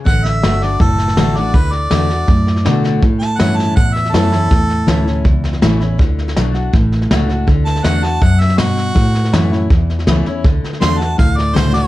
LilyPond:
<<
  \new Staff \with { instrumentName = "Harmonica" } { \time 4/4 \key d \major \tempo 4 = 162 fis''8 e''4 d''8 a'4. d''8 | b'8 d''2. r8 | r8 a''8 fis''8 a''8 fis''8 e''8 a'4~ | a'2 r2 |
r1 | r8 a''8 fis''8 a''8 fis''8 e''8 fis'4~ | fis'2 r2 | r4 c'''8 a''8 f''8 d''8 c''8 d''8 | }
  \new Staff \with { instrumentName = "Steel-string acoustic guitar" } { \time 4/4 \key d \major << { r4 <d a d' fis'>8 <d' fis'>8 r4 <d a d' fis'>8 <d' fis'>8 | r4 <d a d' fis'>8 <d' fis'>8 r4 <d a d' fis'>4 | r4 <e a cis' e'>4 r4 <e a cis' e'>8 <cis' e'>8 | r4 <e a cis' e'>8 <cis' e'>8 r4 <e a cis' e'>8 <cis' e'>8 |
r4 <d a d' fis'>8 <d' fis'>8 r4 <d a d' fis'>8 <d' fis'>8 | r4 <d a d' fis'>8 <d' fis'>8 r2 | r4 <e a cis' e'>8 <cis' e'>8 r4 <e a cis' e'>8 <cis' e'>8 | r4 <d a d' fis'>8 <d' fis'>8 r4 <d a d' fis'>8 <d' fis'>8 | } \\ { d2 a,2 | d2 a,2 | a,2 e,2 | a,2 e,2 |
d2 a,2 | d2 fis,4 b,4 | a,2 e,2 | d2 a,2 | } >> }
  \new Staff \with { instrumentName = "Fingered electric bass" } { \clef bass \time 4/4 \key d \major a,,4 g,,4 fis,,4 a,,4 | d,4 e,4 fis,4 b,4 | a,4 g,4 a,4 fis,4 | e,4 d,4 cis,4 a,,4 |
d,4 b,,4 a,,4 cis,4 | d,4 e,4 fis,4 g,4 | a,4 fis,4 e,4 cis,8 r8 | d,8 r8 e,4 d,4 cis,4 | }
  \new DrumStaff \with { instrumentName = "Drums" } \drummode { \time 4/4 <bd sn>8 sn8 <hhp sn>8 sn8 <bd sn>8 sn16 sn16 <hhp sn>8 sn8 | <bd sn>8 sn8 <hhp sn>8 sn8 <bd sn>8 sn16 sn16 <hhp sn>8 sn8 | <bd sn>8 sn8 <hhp sn>8 sn8 <bd sn>8 sn16 sn16 <hhp sn>8 sn8 | <bd sn>8 sn8 <hhp sn>8 sn8 <bd sn>8 sn16 sn16 <hhp sn>8 sn8 |
<bd sn>8 sn16 sn16 <hhp sn>8 sn8 <bd sn>8 sn16 sn16 <hhp sn>8 sn8 | <bd sn>8 sn16 sn16 <hhp sn>8 sn8 <bd sn>8 sn16 sn16 <hhp sn>8 sn8 | <bd sn>8 sn16 sn16 <hhp sn>8 sn8 <bd sn>8 sn16 sn16 <hhp sn>8 sn8 | <bd sn>8 sn16 sn16 <hhp sn>8 sn8 <bd sn>8 sn8 <hhp sn>8 sn8 | }
>>